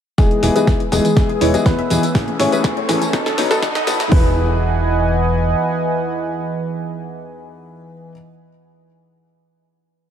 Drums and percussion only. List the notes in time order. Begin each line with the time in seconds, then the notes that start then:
0.18 kick, snare, closed hi-hat, tambourine
0.31 closed hi-hat
0.43 open hi-hat, tambourine
0.56 closed hi-hat, tambourine
0.67 kick, snare, closed hi-hat, tambourine
0.80 closed hi-hat
0.92 open hi-hat, tambourine
1.05 closed hi-hat, tambourine
1.17 kick, snare, closed hi-hat, tambourine
1.29 closed hi-hat
1.41 open hi-hat, tambourine
1.54 closed hi-hat, tambourine
1.66 kick, snare, closed hi-hat, tambourine
1.79 closed hi-hat
1.90 open hi-hat, tambourine
2.03 closed hi-hat, tambourine
2.15 kick, snare, closed hi-hat, tambourine
2.28 closed hi-hat
2.40 snare, open hi-hat, tambourine
2.52 closed hi-hat, tambourine
2.64 kick, snare, closed hi-hat, tambourine
2.77 closed hi-hat
2.89 snare, open hi-hat, tambourine
3.02 closed hi-hat, tambourine
3.13 kick, snare, closed hi-hat, tambourine
3.26 snare, closed hi-hat
3.38 snare, open hi-hat, tambourine
3.51 snare, closed hi-hat, tambourine
3.62 kick, snare, closed hi-hat, tambourine
3.75 snare, closed hi-hat
3.87 snare, open hi-hat, tambourine
4.00 snare, closed hi-hat, tambourine
4.12 kick, open hi-hat